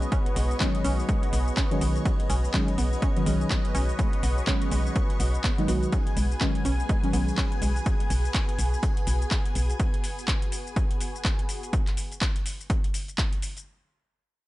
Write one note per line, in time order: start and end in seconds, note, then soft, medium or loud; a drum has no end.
0.00 0.57 D#3 medium
0.00 0.58 F#3 medium
0.00 0.58 G#3 medium
0.00 11.69 B3 medium
0.00 0.58 C#4 loud
0.00 11.69 F#4 medium
0.00 11.69 G#4 medium
0.00 11.69 B4 medium
0.00 5.94 C#5 medium
0.00 5.91 D#5 medium
0.00 5.94 C#6 medium
0.00 closed hi-hat soft
0.00 shaker soft
0.12 0.18 C#4 loud
0.12 kick loud
0.12 closed hi-hat medium
0.12 shaker soft
0.26 closed hi-hat medium
0.36 0.53 B1 loud
0.36 0.45 G#3 medium
0.36 open hi-hat loud
0.36 shaker medium
0.51 shaker soft
0.59 1.68 D#3 medium
0.59 1.68 F#3 medium
0.59 1.68 G#3 medium
0.59 0.66 B3 medium
0.59 1.68 C#4 medium
0.59 kick loud
0.59 clap loud
0.59 closed hi-hat medium
0.59 shaker soft
0.75 closed hi-hat medium
0.84 1.02 B1 medium
0.84 0.90 C#4 loud
0.84 open hi-hat loud
0.84 shaker medium
0.99 shaker soft
1.09 1.17 G#3 medium
1.09 kick loud
1.09 closed hi-hat medium
1.09 shaker soft
1.23 closed hi-hat medium
1.33 1.50 B1 loud
1.33 1.39 B3 medium
1.33 open hi-hat loud
1.33 shaker medium
1.48 shaker soft
1.57 1.63 C#4 loud
1.57 kick loud
1.57 clap loud
1.57 closed hi-hat medium
1.57 shaker soft
1.71 2.51 D#3 medium
1.71 2.51 F#3 medium
1.71 2.52 G#3 medium
1.71 2.52 C#4 medium
1.71 closed hi-hat medium
1.81 1.98 B1 medium
1.81 1.90 G#3 medium
1.81 open hi-hat loud
1.81 shaker medium
1.96 closed hi-hat soft
1.96 shaker soft
2.05 2.11 B3 medium
2.05 kick loud
2.05 closed hi-hat medium
2.05 shaker soft
2.20 closed hi-hat medium
2.30 2.47 B1 loud
2.30 2.35 C#4 loud
2.30 open hi-hat loud
2.30 shaker medium
2.45 shaker soft
2.53 2.77 D#3 medium
2.53 2.77 F#3 medium
2.53 2.63 G#3 medium
2.53 2.77 G#3 medium
2.53 2.78 C#4 loud
2.53 kick loud
2.53 clap loud
2.53 closed hi-hat medium
2.53 shaker soft
2.68 closed hi-hat medium
2.78 2.95 B1 medium
2.78 2.84 B3 medium
2.78 open hi-hat loud
2.78 shaker medium
2.93 shaker soft
3.02 3.08 C#4 loud
3.02 kick loud
3.02 closed hi-hat medium
3.02 shaker soft
3.16 3.24 D#3 medium
3.16 3.24 F#3 medium
3.16 3.24 G#3 medium
3.16 3.24 C#4 medium
3.16 closed hi-hat medium
3.25 3.43 B1 loud
3.25 4.45 D#3 medium
3.25 4.45 F#3 medium
3.25 3.35 G#3 medium
3.25 4.45 G#3 medium
3.25 4.45 C#4 loud
3.25 open hi-hat loud
3.25 shaker medium
3.41 shaker soft
3.51 3.56 B3 medium
3.51 kick loud
3.51 clap loud
3.51 closed hi-hat medium
3.51 shaker soft
3.65 closed hi-hat medium
3.75 3.92 B1 medium
3.75 3.81 C#4 loud
3.75 open hi-hat loud
3.75 shaker medium
3.89 closed hi-hat soft
3.89 shaker soft
3.99 4.08 G#3 medium
3.99 kick loud
3.99 closed hi-hat medium
3.99 shaker soft
4.13 closed hi-hat medium
4.23 4.40 B1 loud
4.23 4.29 B3 medium
4.23 open hi-hat loud
4.23 shaker medium
4.38 shaker soft
4.46 5.55 D#3 medium
4.46 5.55 F#3 medium
4.46 5.55 G#3 medium
4.46 4.53 C#4 loud
4.46 5.55 C#4 medium
4.46 kick loud
4.46 clap loud
4.46 closed hi-hat medium
4.46 shaker soft
4.62 closed hi-hat medium
4.72 4.89 B1 medium
4.72 4.80 G#3 medium
4.72 open hi-hat loud
4.72 shaker medium
4.86 shaker soft
4.96 5.02 B3 medium
4.96 kick loud
4.96 closed hi-hat medium
4.96 shaker soft
5.10 closed hi-hat medium
5.20 5.37 B1 loud
5.20 5.26 F#4 medium
5.20 open hi-hat loud
5.20 shaker medium
5.34 closed hi-hat soft
5.34 shaker soft
5.44 5.50 B3 medium
5.44 kick loud
5.44 clap loud
5.44 closed hi-hat medium
5.44 shaker soft
5.58 5.67 D#3 medium
5.58 5.67 F#3 medium
5.58 5.67 G#3 medium
5.58 5.67 D#4 loud
5.58 closed hi-hat soft
5.68 5.85 B1 loud
5.68 5.92 D#3 medium
5.68 5.92 F#3 medium
5.68 5.92 G#3 medium
5.68 5.77 B3 medium
5.68 5.92 F#4 medium
5.68 open hi-hat loud
5.68 shaker medium
5.83 closed hi-hat soft
5.83 shaker soft
5.92 5.98 C#4 loud
5.92 11.74 G#4 medium
5.92 11.74 G#5 medium
5.92 11.72 G#5 medium
5.92 kick loud
5.92 closed hi-hat medium
5.92 shaker soft
6.07 closed hi-hat medium
6.17 6.34 B1 loud
6.17 6.25 G#3 medium
6.17 open hi-hat loud
6.17 shaker medium
6.32 shaker soft
6.40 6.64 D#3 medium
6.40 6.64 F#3 medium
6.40 6.65 G#3 medium
6.40 6.47 B3 medium
6.40 6.65 C#4 loud
6.40 kick loud
6.40 clap loud
6.40 closed hi-hat medium
6.40 shaker soft
6.55 closed hi-hat medium
6.65 6.82 B1 loud
6.65 6.71 C#4 loud
6.65 open hi-hat loud
6.65 shaker medium
6.80 shaker soft
6.89 6.98 G#3 medium
6.89 kick loud
6.89 closed hi-hat medium
6.89 shaker soft
7.03 7.11 D#3 medium
7.03 7.11 F#3 medium
7.03 7.11 G#3 medium
7.03 7.11 C#4 medium
7.03 closed hi-hat soft
7.13 7.31 B1 loud
7.13 8.10 D#3 medium
7.13 8.10 F#3 medium
7.13 8.10 G#3 medium
7.13 7.19 B3 medium
7.13 8.11 C#4 loud
7.13 open hi-hat loud
7.13 shaker medium
7.28 shaker soft
7.38 7.44 C#4 loud
7.38 kick loud
7.38 clap loud
7.38 closed hi-hat medium
7.38 shaker soft
7.52 closed hi-hat medium
7.62 7.79 B1 medium
7.62 7.71 G#3 medium
7.62 open hi-hat loud
7.62 shaker medium
7.76 closed hi-hat soft
7.76 shaker soft
7.86 kick loud
7.86 closed hi-hat medium
7.86 shaker soft
8.00 closed hi-hat medium
8.10 8.27 B1 loud
8.10 open hi-hat loud
8.10 shaker medium
8.25 shaker soft
8.34 kick loud
8.34 clap loud
8.34 closed hi-hat medium
8.34 shaker soft
8.49 closed hi-hat medium
8.59 8.76 B1 medium
8.59 open hi-hat loud
8.59 shaker medium
8.73 shaker soft
8.83 kick loud
8.83 closed hi-hat medium
8.83 shaker soft
8.97 closed hi-hat medium
9.07 9.24 B1 loud
9.07 open hi-hat loud
9.07 shaker medium
9.22 shaker soft
9.31 kick loud
9.31 clap loud
9.31 closed hi-hat medium
9.31 shaker soft
9.45 closed hi-hat medium
9.55 9.72 B1 medium
9.55 open hi-hat loud
9.55 shaker medium
9.70 closed hi-hat soft
9.70 shaker soft
9.80 kick loud
9.80 closed hi-hat medium
9.80 shaker soft
9.94 closed hi-hat medium
10.04 open hi-hat loud
10.04 shaker medium
10.19 shaker soft
10.28 kick loud
10.28 clap loud
10.28 closed hi-hat medium
10.28 shaker soft
10.42 closed hi-hat medium
10.52 open hi-hat loud
10.52 shaker medium
10.67 shaker soft
10.76 kick loud
10.76 closed hi-hat medium
10.76 shaker soft
10.91 closed hi-hat medium
11.01 open hi-hat loud
11.01 shaker medium
11.15 shaker soft
11.25 kick loud
11.25 clap loud
11.25 closed hi-hat medium
11.25 shaker soft
11.39 closed hi-hat medium
11.49 open hi-hat loud
11.49 shaker medium
11.63 closed hi-hat soft
11.63 shaker soft
11.73 kick loud
11.73 closed hi-hat medium
11.73 shaker soft
11.87 clap soft
11.87 closed hi-hat medium
11.97 open hi-hat loud
11.97 shaker medium
12.12 closed hi-hat soft
12.12 shaker soft
12.21 kick loud
12.21 clap loud
12.21 closed hi-hat medium
12.21 shaker soft
12.36 closed hi-hat medium
12.46 open hi-hat loud
12.46 shaker medium
12.61 shaker soft
12.70 kick loud
12.70 closed hi-hat medium
12.70 shaker soft
12.84 closed hi-hat medium
12.94 open hi-hat loud
12.94 shaker medium
13.08 closed hi-hat soft
13.08 shaker soft
13.18 kick loud
13.18 clap loud
13.18 closed hi-hat medium
13.18 shaker soft
13.33 closed hi-hat medium
13.42 open hi-hat loud
13.42 shaker medium
13.57 closed hi-hat soft
13.57 shaker soft